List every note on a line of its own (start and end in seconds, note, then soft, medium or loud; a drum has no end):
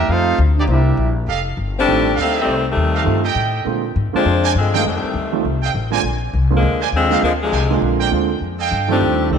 0.08 0.37 F2 medium
0.08 0.38 A3 medium
0.08 0.38 C4 medium
0.08 0.39 D#4 medium
0.08 0.38 F4 medium
0.08 0.39 A4 medium
0.08 0.40 C5 medium
0.08 0.39 F5 loud
0.38 0.67 D2 loud
0.57 0.64 A#3 medium
0.57 0.62 D4 medium
0.57 0.63 D#4 medium
0.57 0.63 G4 medium
0.57 0.63 D5 medium
0.67 0.97 C2 loud
0.67 1.13 G3 medium
0.67 0.81 A#3 medium
0.67 1.13 A#3 medium
0.67 0.80 D4 medium
0.67 1.14 D4 medium
0.67 0.81 E4 medium
0.67 1.13 E4 medium
0.67 1.14 G4 medium
0.67 1.14 A#4 medium
0.67 0.80 C5 medium
0.67 1.14 E5 medium
0.97 1.26 A#1 loud
1.27 1.56 F1 medium
1.27 1.40 G4 medium
1.27 1.40 A4 medium
1.27 1.40 D#5 medium
1.27 1.40 F5 medium
1.57 1.86 G1 medium
1.78 2.15 G3 medium
1.78 2.16 A3 medium
1.78 2.15 C4 medium
1.78 2.16 D4 loud
1.87 2.15 A1 medium
1.87 2.04 D#3 medium
1.87 2.04 G3 soft
1.87 2.04 A3 soft
1.87 2.04 C4 soft
1.87 2.04 F4 medium
2.16 2.45 D2 medium
2.16 2.61 G4 medium
2.16 2.61 A4 medium
2.16 2.61 D#5 medium
2.16 2.61 F5 loud
2.20 2.36 D#3 medium
2.20 2.36 G3 medium
2.20 2.36 A3 medium
2.20 2.36 C4 medium
2.40 2.65 D#3 medium
2.40 2.66 G3 medium
2.40 2.66 A3 medium
2.40 2.66 C4 medium
2.46 2.75 C2 medium
2.71 3.23 C3 medium
2.71 3.23 D#3 medium
2.71 3.23 G3 medium
2.71 3.23 A3 medium
2.76 3.05 D#2 medium
2.95 3.02 G4 medium
2.95 3.02 A4 medium
2.95 3.02 D#5 medium
2.95 3.02 F5 medium
3.04 3.34 G2 medium
3.04 3.21 D#3 medium
3.04 3.22 G3 medium
3.04 3.22 A3 medium
3.04 3.22 C4 soft
3.04 3.22 F4 medium
3.24 3.63 G4 medium
3.24 3.63 A4 medium
3.24 3.63 D#5 medium
3.24 3.63 G5 loud
3.35 3.64 A2 medium
3.65 3.94 A#2 medium
3.65 3.82 D3 soft
3.65 3.82 G#3 soft
3.65 3.82 A#3 soft
3.65 3.82 C4 soft
3.65 3.83 F4 medium
3.96 4.13 G#2 medium
4.13 4.24 D3 medium
4.13 4.53 F3 medium
4.13 4.24 G#3 medium
4.13 4.53 G#3 medium
4.13 4.24 A#3 medium
4.13 4.24 C4 medium
4.13 4.53 C4 medium
4.13 4.53 D4 loud
4.13 4.24 F4 medium
4.13 muted upright bass stroke soft
4.25 4.54 F2 medium
4.44 4.51 A#4 loud
4.44 4.51 C5 medium
4.44 4.51 D5 medium
4.44 4.51 G#5 loud
4.55 4.84 G2 medium
4.55 4.74 D3 medium
4.55 4.74 F3 medium
4.55 4.75 G#3 medium
4.55 4.74 C4 medium
4.73 4.84 D#3 medium
4.73 4.86 F3 medium
4.73 4.84 G3 medium
4.73 4.84 A3 medium
4.73 4.84 C4 medium
4.73 4.84 D#4 medium
4.73 4.81 A4 medium
4.73 4.81 D#5 medium
4.73 4.81 F5 medium
4.73 4.81 G5 loud
4.77 4.86 D3 medium
4.77 4.86 G#3 medium
4.77 4.86 A#3 medium
4.85 5.02 F2 medium
4.85 5.42 C3 medium
4.85 5.42 D#3 medium
4.85 5.41 G3 medium
4.85 5.42 A3 medium
5.03 muted upright bass stroke soft
5.14 5.43 D2 medium
5.32 5.42 D#3 medium
5.32 5.43 G3 medium
5.32 5.43 A3 medium
5.32 5.43 C4 medium
5.32 5.43 F4 medium
5.45 5.73 C2 medium
5.63 5.70 A4 medium
5.63 5.70 D#5 medium
5.63 5.70 F5 medium
5.63 5.70 G5 medium
5.74 6.03 A1 medium
5.90 6.02 D3 soft
5.90 6.02 G#3 soft
5.90 6.01 A#3 soft
5.90 6.02 C4 soft
5.90 6.02 F4 medium
5.90 6.00 A#4 medium
5.90 6.00 C5 medium
5.90 6.00 D5 medium
5.90 6.00 G#5 loud
6.03 6.32 A#1 medium
6.34 6.62 C2 medium
6.50 6.61 D3 medium
6.50 6.61 G#3 medium
6.50 6.61 A#3 medium
6.50 6.62 C4 medium
6.50 6.62 F4 medium
6.56 6.82 D3 medium
6.56 6.82 F3 medium
6.56 6.82 G#3 medium
6.56 6.82 A#3 medium
6.63 6.92 D2 medium
6.81 6.89 A#4 medium
6.81 6.89 C5 medium
6.81 6.89 D5 medium
6.81 6.89 G#5 medium
6.92 7.21 D#2 medium
6.92 7.22 D3 medium
6.92 7.22 F3 medium
6.92 7.22 G#3 medium
6.92 7.22 C4 medium
7.10 7.21 D3 medium
7.10 7.21 G#3 medium
7.10 7.21 A#3 medium
7.10 7.21 C4 medium
7.10 7.21 F4 medium
7.10 7.19 A#4 medium
7.10 7.18 C5 medium
7.10 7.18 D5 medium
7.10 7.18 F5 medium
7.22 7.51 D2 medium
7.22 7.32 D3 medium
7.22 7.32 F3 medium
7.22 7.32 G#3 medium
7.22 7.32 A#3 medium
7.42 7.80 C3 medium
7.42 7.80 D3 medium
7.42 7.80 F3 medium
7.42 7.80 G#3 medium
7.51 7.81 C2 loud
7.51 7.64 A#4 medium
7.51 7.64 C5 medium
7.51 7.64 D5 medium
7.51 7.64 G#5 medium
7.71 8.09 D3 medium
7.71 8.09 G#3 medium
7.71 8.09 A#3 medium
7.71 8.10 C4 medium
7.71 8.10 F4 medium
7.82 8.11 A#1 medium
8.00 8.08 A#4 medium
8.00 8.08 C5 medium
8.00 8.08 D5 medium
8.00 8.08 G5 medium
8.11 8.40 D2 medium
8.11 8.28 D3 medium
8.11 8.28 G#3 medium
8.11 8.28 A#3 medium
8.11 8.28 C4 medium
8.11 8.29 F4 medium
8.41 8.70 F2 medium
8.59 8.98 A4 medium
8.59 8.98 D#5 medium
8.59 8.98 F5 medium
8.59 8.98 G5 loud
8.72 9.00 G2 loud
8.88 9.27 D#3 medium
8.88 9.28 G3 medium
8.88 9.28 A3 medium
8.88 9.28 C4 medium
8.88 9.28 D4 medium
8.88 9.28 F4 medium
9.01 9.29 D#2 medium
9.30 9.38 C2 medium
9.30 9.38 D#3 medium
9.30 9.38 G3 medium
9.30 9.38 A3 medium
9.30 9.38 C4 medium
9.30 9.38 G4 medium